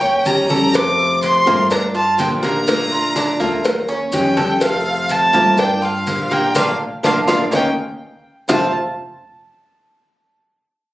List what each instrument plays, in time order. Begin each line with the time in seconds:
Already playing: violin G5
0.01 upright bass D#2, cuban tres C#4, high conga, maracas
0.25 upright bass F2, steel-string acoustic guitar D#3 G3 C#4 G4, violin A#5, high conga, maracas
0.49 steel-string acoustic guitar G3 C#4 G4, cuban tres A4, high conga, maracas
0.73 steel-string acoustic guitar C3 A3 C4 F4, violin D6, cowbell, high conga, maracas
0.99 high conga, maracas
1.22 violin C6, cowbell, high conga, maracas
1.46 upright bass G2, steel-string acoustic guitar E3 A3 C4 F4, cuban tres A#3, high conga, low conga, maracas
1.70 cuban tres D4, violin A#5, muted steel-string acoustic guitar stroke, cowbell, high conga, maracas
1.94 cuban tres F4, violin A5, high conga, maracas
2.18 upright bass A#1, steel-string acoustic guitar D3 F3 A#3 D4 G4, violin G5, cowbell, high conga, maracas
2.42 cuban tres A#3, steel-string acoustic guitar A#3 D4 G4, violin A#5, cowbell, high conga, maracas
2.67 steel-string acoustic guitar D3 A3 D4 F4, cuban tres A#3, cowbell, high conga, maracas
2.92 cuban tres F4, high conga, maracas
3.16 cuban tres D4, cowbell, high conga, maracas
3.40 upright bass D#2, steel-string acoustic guitar A3 D4 F4, cuban tres A#3, high conga, maracas
3.64 muted steel-string acoustic guitar stroke, cowbell, high conga, maracas
3.88 cuban tres C#4, high conga, maracas
4.12 upright bass F2, steel-string acoustic guitar D#3 G3 C#4 G4, violin G5, cowbell, high conga, maracas
4.36 steel-string acoustic guitar G3 C#4 G4, cuban tres A4, cowbell, high conga, maracas
4.61 steel-string acoustic guitar C3 A3 C4 F4, violin F5, cowbell, maracas
4.85 high conga, maracas
5.09 violin A5, cowbell, high conga, maracas
5.33 upright bass G2, steel-string acoustic guitar E3 A3 C4 F4, cuban tres A#3, high conga, low conga, maracas
5.57 cuban tres D4, violin G5, muted steel-string acoustic guitar stroke, cowbell, high conga, low conga, maracas
5.82 cuban tres F4, violin F5, high conga, maracas
6.06 upright bass A#1, steel-string acoustic guitar D3 F3 A#3 D4 G4, cowbell, high conga, maracas
6.31 cuban tres A#3, steel-string acoustic guitar A#3 D4 G4, violin G5, cowbell, high conga, maracas
6.55 upright bass A#1, steel-string acoustic guitar A3 A#3 D4, cuban tres A#3 D4 F4, violin F5, cowbell, high conga, maracas
7.03 upright bass A#1, steel-string acoustic guitar A3 A#3 D4, cuban tres A#3 D4 F4, violin F5, cowbell, high conga, maracas
7.27 upright bass A#1, steel-string acoustic guitar A3 A#3 D4, cuban tres A#3 D4 F4, violin F5, cowbell, high conga, maracas
7.51 upright bass D#2, cuban tres A#3 C#4 D#4, steel-string acoustic guitar A#3 C#4 D#4, violin G5, cowbell, high conga, maracas
8.48 upright bass F1, steel-string acoustic guitar F2 C3 E3 A3 C4 F4, cuban tres F4 C5 E5, violin A5, low bongo, low conga, maracas